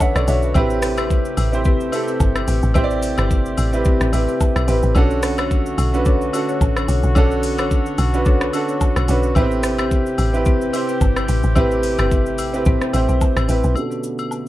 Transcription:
Already playing: D3 A3 C#4 D4 F#4 A4 C#5 A5
0.00 B4 E5 F#5, kick, low woodblock, shaker
0.15 B1 A4 D5, cross-stick, high agogo, shaker
0.28 B1 D4 F#4 A4 C#5 E5, open hi-hat, shaker
0.42 F#4 B4, shaker
0.54 A1 C3 C4 E4 G4 B4, kick, high agogo, shaker
0.70 shaker
0.82 cross-stick, open hi-hat, shaker
0.97 C4 G4 B4, cross-stick, high agogo, shaker
1.10 kick, shaker
1.25 shaker
1.37 A1, open hi-hat, high agogo, shaker
1.52 C4 E4 G4 C5, shaker
1.64 C4 G4 B4, kick, shaker
1.80 shaker
1.92 C4 E4 G4 A4, open hi-hat, high agogo, shaker
2.08 C4 G4 B4, shaker
2.20 G1, kick, low woodblock, shaker
2.36 cross-stick, high agogo, shaker
2.48 A1 C4 G4 B4, open hi-hat, shaker
2.63 A1, shaker
2.74 A1 C4 E4 G4 B4 C5, kick, high agogo, shaker
2.84 D5
2.90 shaker
3.03 open hi-hat, shaker
3.18 G1 C4 G4 B4, cross-stick, high agogo, shaker
3.31 kick, shaker
3.46 shaker
3.57 A1, open hi-hat, high agogo, shaker
3.73 C4 E4 G4 B4, shaker
3.85 C4 G4 B4, kick, shaker
4.01 A1, cross-stick, shaker
4.12 A1 C4 E4 G4 B4, open hi-hat, high agogo, shaker
4.28 C4 G4 B4, shaker
4.40 kick, low woodblock, shaker
4.56 B1, cross-stick, high agogo, shaker
4.68 A1 C4 E4 G4 B4, open hi-hat, shaker
4.83 A1, shaker
4.95 B1 D3 A3 C#4 D4 F#4 A4 C#5, kick, high agogo, shaker
5.11 shaker
5.23 cross-stick, open hi-hat, shaker
5.38 D4 A4 C#5, cross-stick, high agogo, shaker
5.51 kick, shaker
5.66 shaker
5.78 B1, open hi-hat, high agogo, shaker
5.93 C#4 D4 F#4 B4, shaker
6.05 D4 A4 C#5, kick, shaker
6.21 shaker
6.33 C#4 D4 F#4 A4, open hi-hat, high agogo, shaker
6.48 D4 A4 C#5, shaker
6.61 A1, kick, low woodblock, shaker
6.77 cross-stick, high agogo, shaker
6.88 B1 D4 A4 C#5, open hi-hat, shaker
7.03 B1, shaker
7.15 B1 B3 C#4 D4 F#4 A4 C#5, kick, high agogo, shaker
7.31 shaker
7.43 open hi-hat, shaker
7.58 A1 D4 A4 C#5, cross-stick, high agogo, shaker
7.71 kick, shaker
7.86 shaker
7.98 B1, open hi-hat, high agogo, shaker
8.13 C#4 D4 F#4 B4, shaker
8.25 D4 A4 C#5, kick, shaker
8.41 cross-stick, shaker
8.53 C#4 D4 F#4 A4, open hi-hat, high agogo, shaker
8.68 D4 A4 C#5, shaker
8.81 kick, low woodblock, shaker
8.96 B1, cross-stick, high agogo, shaker
9.08 B1 C#4 D4 F#4 A4 B4 C#5, open hi-hat, shaker
9.23 shaker
9.35 A1 C3 B3 C4 E4 G4 B4, kick, high agogo, shaker
9.42 C4
9.51 shaker
9.63 cross-stick, open hi-hat, shaker
9.78 C4 G4 B4, cross-stick, high agogo, shaker
9.91 kick, shaker
10.06 shaker
10.18 A1, open hi-hat, high agogo, shaker
10.33 C4 E4 G4 B4, shaker
10.45 C4 G4 B4, kick, shaker
10.61 shaker
10.73 C4 E4 G4 C5, open hi-hat, high agogo, shaker
10.89 C4 G4 B4, shaker
11.01 G1, kick, low woodblock, shaker
11.16 cross-stick, high agogo, shaker
11.28 A1 C4 G4 B4, open hi-hat, shaker
11.43 A1, shaker
11.55 A1 A3 C4 E4 G4 B4, kick, high agogo, shaker
11.71 shaker
11.83 open hi-hat, shaker
11.98 G1 C4 G4 B4, cross-stick, high agogo, shaker
12.11 kick, shaker
12.26 shaker
12.38 A1, open hi-hat, high agogo, shaker
12.53 C4 E4 G4 B4, shaker
12.65 A1 C4 G4 B4, kick, shaker
12.81 cross-stick, shaker
12.93 A1 C4 E4 G4 C5, open hi-hat, high agogo, shaker
13.09 B1 C4 G4 B4, shaker
13.21 kick, low woodblock, shaker
13.36 A1, cross-stick, high agogo, shaker
13.48 A1 C4 E4 G4 B4, open hi-hat, shaker
13.64 B1, shaker
13.74 B2 D3 A3 B3 C#4 D4 F#4, high agogo, shaker
13.79 A4
13.91 shaker
14.03 shaker
14.19 high agogo, shaker
14.31 low woodblock, shaker

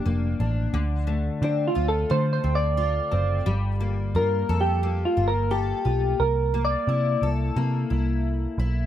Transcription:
Already playing: G2 F3 D4
0.06 F1 A#3
0.40 A1 D4
0.74 D2 D3
1.07 A3
1.42 D3 C4 D4
1.68 F4
1.75 D2 F4
1.88 A4
2.10 D3 A3 C5
2.33 C5
2.44 D2 C4
2.55 D5
2.77 F4
3.11 F#1 C4
3.46 G1 G3
3.80 A#3
4.15 G2 F4 A#4
4.49 F2 A4
4.61 G4
4.83 A#3
5.05 F4
5.17 G1 F4
5.28 A#4
5.51 G4 A4
5.85 B1 F4
6.20 C2 A#4
6.54 A#3
6.65 D5
6.88 C3 E4
7.22 C2 A4
7.56 C3 A#3
7.90 C2 E4
8.58 B1 E4

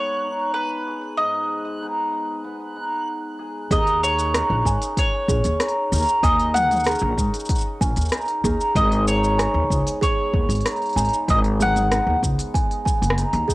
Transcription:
Already playing: G#2 D#3 B3 C#4 D#4 G#4 C#5 F#6
0.24 D#4
0.54 B4
0.87 G#4
1.17 G#2 G#4 D#5
1.82 B3 D#4 G#4
2.44 B3
2.76 D#4
3.39 G#4
3.71 D#2 D#3 G#4 A#4 D#5, kick, open hi-hat, shaker
3.87 open hi-hat
4.03 D#4 C#5, shaker
4.18 open hi-hat, shaker
4.34 C#4 D#4 A#4, cross-stick, open hi-hat, shaker
4.50 A#1
4.65 G#2 G#5, kick, shaker
4.82 open hi-hat, shaker
4.97 C#5, kick, open hi-hat, shaker
5.28 A#1 C#4 G#4, kick, shaker
5.44 D#2, open hi-hat, shaker
5.60 D#4, cross-stick, open hi-hat, shaker
5.68 open hi-hat
5.92 D#2 C#4 D#4 A#4, shaker
5.95 shaker
5.98 shaker
5.99 shaker
6.02 shaker
6.05 shaker
6.07 shaker
6.09 shaker
6.23 D#2 D#3 A#4 D#5 G#5, kick, open hi-hat, shaker
6.40 open hi-hat
6.54 D#4 F#5, mid tom, shaker
6.71 mid tom, open hi-hat, shaker
6.76 shaker
6.80 shaker
6.84 C#4 G#4, cross-stick, open hi-hat, shaker
6.87 D#4 A#4, shaker
6.91 shaker
6.95 shaker
6.99 A#1, shaker
7.17 G#2, kick, shaker
7.34 open hi-hat, shaker
7.40 shaker
7.45 open hi-hat, shaker
7.49 kick, shaker
7.55 shaker
7.58 shaker
7.61 shaker
7.81 A#1 C#4 G#5, kick, shaker
7.96 D#2, open hi-hat, shaker
8.01 shaker
8.05 shaker
8.09 D#4, cross-stick, open hi-hat, shaker
8.13 shaker
8.17 shaker
8.21 shaker
8.25 open hi-hat, shaker
8.44 D#2 C#4 D#4 G#4 A#4, kick, shaker
8.61 shaker
8.75 G#1 G#2 G#4 D#5, kick, open hi-hat, shaker
8.92 open hi-hat
9.07 D#4 C#5, shaker
9.23 open hi-hat, shaker
9.38 B3 D#4 G#4 G#5, cross-stick, open hi-hat, shaker
9.54 D#2
9.70 C#2, kick, shaker
9.87 open hi-hat, shaker
10.01 G#4 C#5, kick, open hi-hat, shaker
10.34 D#2 B3, kick
10.49 G#1, open hi-hat, shaker
10.55 open hi-hat
10.61 open hi-hat
10.65 D#4, cross-stick, open hi-hat, shaker
10.71 open hi-hat
10.76 open hi-hat
10.82 open hi-hat
10.86 open hi-hat
10.89 open hi-hat
10.93 G#1 G#5, open hi-hat
10.97 B3 D#4 G#4, open hi-hat, shaker
11.00 open hi-hat
11.05 open hi-hat
11.09 open hi-hat
11.13 shaker
11.28 G#1 G#2 G#4 D#5, kick, open hi-hat, shaker
11.44 open hi-hat
11.60 D#4 G#4 F#5, mid tom, shaker
11.76 mid tom, open hi-hat, shaker
11.91 B3 D#4 G#4, cross-stick, open hi-hat, shaker
12.07 D#2
12.22 C#2, kick, shaker
12.39 open hi-hat, shaker
12.54 G#5, kick, open hi-hat
12.71 open hi-hat
12.85 B3 G#5, kick, shaker
13.02 F#1, open hi-hat, shaker
13.10 cross-stick
13.18 D#4, open hi-hat, shaker
13.33 D#2, open hi-hat
13.48 B3 D#4 G#4, kick, shaker

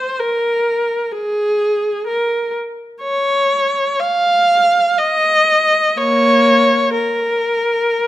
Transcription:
Already playing: C5
0.19 A#4
1.12 G#4
2.07 A#4
3.01 C#5
4.00 F5
4.98 D#5
5.97 A#3 C#5
6.94 A#4

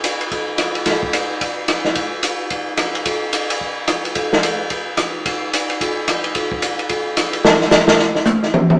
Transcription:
0.04 hi-hat pedal, ride
0.21 ride
0.31 kick, ride
0.58 cross-stick, hi-hat pedal, ride
0.75 ride
0.86 kick, snare, ride
1.03 kick
1.13 hi-hat pedal, ride
1.41 kick, ride
1.68 cross-stick, hi-hat pedal, ride
1.85 snare
1.95 kick, ride
2.23 hi-hat pedal, ride
2.50 kick, ride
2.77 cross-stick, hi-hat pedal, ride
2.95 ride
3.05 kick, ride
3.33 hi-hat pedal, ride
3.50 ride
3.61 kick
3.88 cross-stick, hi-hat pedal, ride
4.05 ride
4.15 kick, ride
4.33 snare
4.43 hi-hat pedal, ride
4.70 kick, ride
4.97 cross-stick, hi-hat pedal, ride
5.26 kick, ride
5.53 hi-hat pedal, ride
5.70 ride
5.81 kick, ride
6.08 cross-stick, hi-hat pedal, ride
6.24 ride
6.35 kick, ride
6.52 kick
6.62 hi-hat pedal, ride
6.79 ride
6.89 kick, ride
7.17 cross-stick, hi-hat pedal, ride
7.33 ride
7.45 snare
7.61 snare
7.71 snare, hi-hat pedal
7.88 snare
7.99 snare
8.15 snare
8.25 hi-hat pedal, high tom
8.43 snare
8.54 mid tom
8.70 mid tom

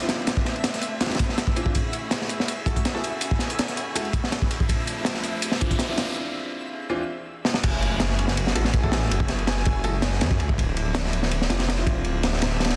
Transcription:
Already playing: F3 A3 C4 D4 E4 E5 E6
0.00 C4 D4 E4 F4, snare, tambourine
0.09 snare, ride, tambourine
0.18 snare
0.27 A3 C4 D4 E5, snare, ride, tambourine
0.37 kick, snare
0.45 snare, ride
0.56 ride
0.64 snare, ride, tambourine
0.74 snare, closed hi-hat
0.81 ride, tambourine
1.01 E3 C4 D4 F4, snare, ride, tambourine
1.06 snare, ride
1.10 snare, ride
1.15 snare, ride
1.19 F3 A3 C4 D4 E4, kick, ride, tambourine
1.29 snare
1.38 snare, ride, tambourine
1.47 kick
1.56 E3 C4 D4 F4, ride, tambourine
1.66 kick
1.74 A3 C#4 E4 F#4 G#4, kick, ride, tambourine, riser
1.93 ride, tambourine
2.11 snare, ride, tambourine
2.21 snare
2.29 ride, tambourine
2.40 snare
2.48 ride, tambourine
2.66 G#3 A3 C#4 E4 F#4 G#4 A4, kick, ride, tambourine
2.76 kick, closed hi-hat
2.85 snare, ride, tambourine
2.95 E4 F#4 G#4 A4, snare
3.04 ride, tambourine
3.21 C#4 E4 F#4 G#5, ride, tambourine
3.31 kick, snare
3.39 snare, ride, tambourine
3.50 closed hi-hat, ride
3.59 snare, ride, tambourine
3.68 snare, closed hi-hat
3.77 ride, tambourine
3.95 G#3 E4 F#4 A4, ride, tambourine
4.05 ride
4.13 A3 C#4 E4 F#4 G#4, kick, ride, tambourine
4.24 snare
4.32 snare, ride, tambourine
4.42 kick
4.51 snare, ride, tambourine
4.60 kick
4.69 F3 A3 C4 D4 E4, kick, ride, tambourine
4.87 ride, tambourine
5.05 snare, ride, tambourine
5.14 snare
5.23 ride, tambourine
5.42 ride, tambourine
5.52 snare
5.61 E3 F3 A3 C4 D4 E4 F4, kick, ride, tambourine
5.71 kick, closed hi-hat
5.79 snare, ride, tambourine
5.89 C4 D4 E4 F4, snare
5.97 snare, ride, tambourine
6.90 E3 C4 D4 F4
7.45 snare
7.54 snare
7.63 F#1 A3 C#4 E4 F#4 G#4, kick, crash, ride, impact
7.82 ride
8.00 snare, ride
8.10 snare
8.19 ride
8.28 snare
8.37 ride
8.47 snare
8.55 A1 G#3 A3 C#4 E4 F#4 G#4 A4, ride
8.65 snare
8.73 kick, ride
8.83 E4 F#4 G#4 A4, kick
8.92 snare, ride
9.02 snare
9.11 F#1 C#4 E4 F#4 G#5, ride
9.20 kick
9.28 snare, ride
9.39 ride
9.47 snare, ride
9.57 snare
9.65 kick, ride
9.84 G#3 E4 F#4 A4, ride
10.02 A3 C#4 E4 F#4 G#4, snare, ride
10.12 snare
10.21 F#2, snare, ride
10.31 kick
10.40 C#2, ride
10.49 kick
10.57 D1 F3 A3 C4 D4 E4, kick, ride
10.77 ride
10.95 snare, ride
11.05 snare
11.13 ride
11.23 snare
11.31 ride
11.42 snare
11.49 F1 E3 F3 A3 C4 D4 E4 F4, snare, ride
11.60 snare, ride
11.69 snare, ride
11.78 C4 D4 E4 F4, snare
11.87 kick, ride
12.04 D1 A3 C4 D4 E5, ride
12.23 snare, ride
12.33 snare
12.42 snare, ride
12.51 snare
12.60 snare, ride
12.64 snare, ride
12.70 snare, ride

